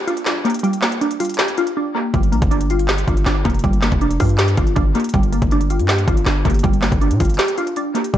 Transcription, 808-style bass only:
2.14 2.34 G1 loud
2.33 2.41 A#1 loud
2.42 3.05 G1 loud
3.08 3.26 G1 loud
3.26 3.44 G1 loud
3.45 3.63 F1 loud
3.64 3.91 G1 loud
3.92 4.19 F1 loud
4.20 4.56 G2 loud
4.57 4.76 G1 loud
4.76 4.94 G1 loud
5.14 5.41 G1 loud
5.42 5.81 G1 loud
5.79 6.06 G2 loud
6.08 6.26 G1 loud
6.26 6.44 G1 loud
6.45 6.63 G1 loud
6.64 6.91 G1 loud
6.92 7.12 G1 loud
7.11 7.20 A#2 loud
7.20 7.38 G1 loud
8.14 8.18 G1 loud

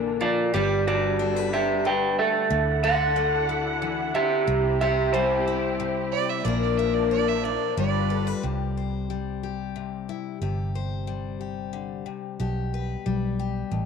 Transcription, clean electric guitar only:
0.21 0.52 F4 medium
0.21 0.53 D5 medium
0.54 0.84 G4 medium
0.54 0.86 D5 medium
0.87 1.49 F#4 medium
0.87 1.53 D5 medium
1.53 1.84 G4 medium
1.53 1.86 E5 medium
1.86 2.17 B4 medium
1.86 2.18 G5 medium
2.19 2.81 A4 medium
2.19 2.83 E5 loud
2.84 3.46 A4 medium
2.84 3.46 F#5 medium
4.15 4.77 G4 loud
4.15 4.80 E5 loud
4.81 5.12 G4 medium
4.81 5.13 E5 loud
5.13 7.73 E4 medium
5.13 7.73 C5 medium

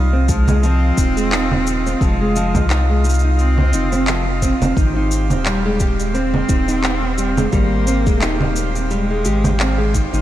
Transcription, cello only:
0.00 0.12 G3 medium
0.30 0.67 G#3 medium
0.65 2.03 C4 loud
2.01 3.04 G#3 loud
3.38 4.38 C4 loud
5.45 5.81 G3 medium
5.79 6.16 G#3 medium
6.15 7.53 C4 loud
7.53 8.52 A#3 loud
8.90 9.90 G#3 loud

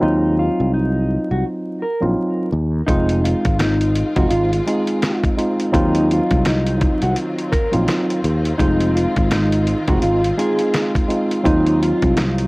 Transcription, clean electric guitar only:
0.03 0.35 D#4 medium
0.39 0.71 F4 medium
0.74 1.27 D#4 medium
1.31 1.44 F#4 medium
1.82 2.01 A#4 medium
2.87 3.19 D#4 loud
3.24 3.56 F4 medium
3.59 4.13 D#4 medium
4.16 4.29 F#4 medium
4.30 4.63 F4 medium
4.67 5.21 G#4 medium
5.73 6.06 D#4 loud
6.13 6.43 F4 medium
6.48 7.00 D#4 medium
7.02 7.15 F#4 medium
7.52 7.71 A#4 medium
8.58 8.91 D#4 loud
8.95 9.27 F4 medium
9.33 9.86 D#4 medium
9.88 10.01 F#4 medium
10.02 10.34 F4 medium
10.38 10.92 G#4 medium
11.46 11.78 D#4 medium
11.82 12.14 F4 medium
12.17 12.47 D#4 medium

